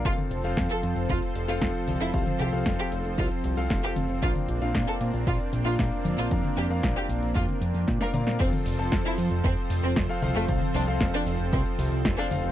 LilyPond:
<<
  \new Staff \with { instrumentName = "Grand piano" } { \time 4/4 \key f \major \tempo 4 = 115 <c' f' a' f''>8. <c' f' a' f''>2 <c' f' a' f''>4~ <c' f' a' f''>16 | <c' f' a' f''>8. <c' f' a' f''>2 <c' f' a' f''>4~ <c' f' a' f''>16 | <d' f' bes' f''>8. <bes d' f' f''>2 <d' f' bes' f''>4~ <d' f' bes' f''>16 | <d' f' bes' f''>8. <d' f' bes' f''>2 r8 <d' f' bes' f''>16 <d' f' bes' f''>8 |
<c' f' a' f''>8. <f c' a' a''>2 r8 <c' f' a' f''>16 <c' f' a' f''>8 | <c' f' a' f''>8. <c' f' a' f''>2 r8 <c' f' a' f''>16 <c' f' a' f''>8 | }
  \new Staff \with { instrumentName = "Violin section" } { \time 4/4 \key f \major f'8 r8. a'8 r16 f'8 r16 f'8. r16 e'16~ | e'16 r16 g'8 r16 g'8 r16 f'8 r8. g'8 r16 | f'8 r8. a'8 r16 f'8 r16 f'8. r16 f'16~ | f'16 r16 g'8 r16 g'8 r16 f'8 r8. bes'8 r16 |
c'8 r8. e'8 r16 c'8 r16 c'8. r16 a16~ | a16 r16 d'8 r16 d'8 r16 c'8 r8. d'8 r16 | }
  \new Staff \with { instrumentName = "Analog synth pad" } { \time 4/4 \key f \major <f c' a' c''>1~ | <f c' a' c''>1 | <bes d'>1~ | <bes d'>1 |
<f c' a' c''>1~ | <f c' a' c''>1 | }
  \new Staff \with { instrumentName = "Analog synth bass" } { \clef bass \time 4/4 \key f \major f,,16 r16 f,,16 f,,16 f,16 r16 f,16 f,,16 f,,16 r16 f,,16 f,,16 f,,16 r16 c,16 f,,16 | c,16 r16 c,16 c,16 f,,16 r16 f,,16 f,,16 c,16 r16 c,16 c,16 f,,16 r16 f,,16 f,,16 | bes,,16 r16 bes,,16 bes,,16 bes,16 r16 bes,16 bes,,16 bes,,16 r16 bes,,16 bes,,16 bes,,16 r16 f,16 bes,,16 | f,16 r16 f,16 f,16 bes,,16 r16 bes,,16 bes,,16 f,16 r16 f,16 f,16 bes,16 r16 bes,16 bes,16 |
f,,16 r16 f,,16 f,,16 f,16 r16 f,16 f,,16 f,,16 r16 f,,16 f,,16 f,,16 r16 c,16 f,,16 | c,16 r16 c,16 c,16 f,,16 r16 f,,16 f,,16 c,16 r16 c,16 c,16 f,,16 r16 f,,16 f,,16 | }
  \new DrumStaff \with { instrumentName = "Drums" } \drummode { \time 4/4 <hh bd>16 <hh tommh>16 hh16 hh16 <hh bd sn>16 hh16 hh16 hh16 <hh bd>16 hh16 hh16 hh16 <hh bd sn>16 hh16 <hh tommh>16 hh16 | <hh bd>16 <hh tommh>16 hh16 hh16 <hh bd sn>16 hh16 hh16 hh16 <hh bd>16 hh16 hh16 hh16 <hh bd sn>16 hh16 <hh tommh>16 hh16 | <hh bd>16 <hh tommh>16 hh16 hh16 <hh bd sn>16 hh16 hh16 hh16 <hh bd>16 hh16 hh16 hh16 <hh bd sn>16 hh16 <hh tommh>16 hh16 | <hh bd>16 <hh tommh>16 hh16 hh16 <hh bd sn>16 hh16 hh16 hh16 <hh bd>16 <hh tommh>16 hh16 hh16 <hh bd sn>16 <hh sn>16 <hh tommh>16 <hh sn>16 |
<cymc hh bd>16 <hh tommh>16 hho16 hh16 <hh bd sn>16 hh16 hho16 hh16 <hh bd>16 hh16 hho16 hh16 <hh bd sn>16 hh16 <hho tommh>16 hh16 | <hh bd>16 <hh tommh>16 hho16 hh16 <hh bd sn>16 hh16 hho16 hh16 <hh bd>16 hh16 hho16 hh16 <hh bd sn>16 hh16 <hho tommh>16 hh16 | }
>>